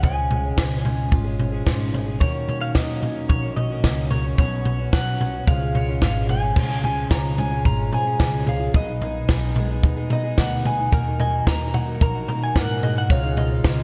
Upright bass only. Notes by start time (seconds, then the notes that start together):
Already playing: C#2
0.58 C#2
1.12 G#1
1.67 G#1
2.21 D#2
2.75 D#2
3.30 A#1
3.84 C#2
4.38 B1
4.93 B1
5.47 C#2
6.02 G#1
6.56 C#2
7.11 C#2
7.65 G#1
8.20 C#2
8.74 B1
9.29 B1
9.83 D#2
10.38 D2
10.93 D#2
11.47 D#2
12.01 A#1
12.56 G#2
13.10 C#2
13.64 C#2